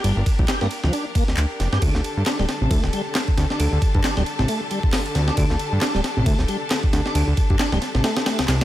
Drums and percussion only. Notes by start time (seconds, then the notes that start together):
0.04 ride
0.26 kick, ride
0.39 kick
0.48 snare, clap, ride
0.61 snare
0.71 ride
0.84 snare
0.93 ride
1.15 kick, ride
1.28 snare
1.37 clap, ride
1.60 snare, ride
1.73 snare
1.82 kick, ride
1.95 snare
2.04 ride
2.26 snare, clap, ride
2.39 snare
2.49 snare, ride
2.71 kick, ride
2.84 snare
2.93 ride
3.15 snare, clap, ride
3.28 kick
3.38 snare, ride
3.50 snare
3.60 ride
3.82 kick, ride
3.95 kick
4.04 snare, clap, ride
4.17 snare
4.26 ride
4.39 snare
4.48 ride
4.71 ride
4.83 kick
4.93 snare, clap, open hi-hat
5.06 ride
5.15 snare, ride
5.28 snare
5.37 kick, ride
5.50 snare
5.59 ride
5.81 snare, clap, ride
5.95 snare
6.04 snare, ride
6.26 kick, ride
6.39 snare
6.48 ride
6.70 snare, clap, ride
6.83 kick
6.93 snare, ride
7.06 snare
7.15 ride
7.37 kick, ride
7.50 kick
7.59 snare, clap, ride
7.72 snare
7.82 snare, ride
7.95 snare
8.04 snare, ride
8.17 snare, ride
8.26 snare, ride
8.39 snare, ride
8.48 snare, clap, ride